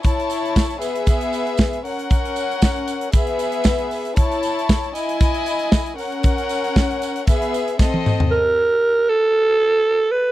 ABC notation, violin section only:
X:1
M:4/4
L:1/8
Q:1/4=116
K:Elyd
V:1 name="Violin section"
[Ec=a]3 [B,Ge]4 [C^Af]- | [CAf]4 [B,Ge]4 | [Ec=a]3 [Edg]4 [C^Af]- | [CAf]4 [B,Ge]2 [=C=A_e]2 |
[K:Am] z8 |]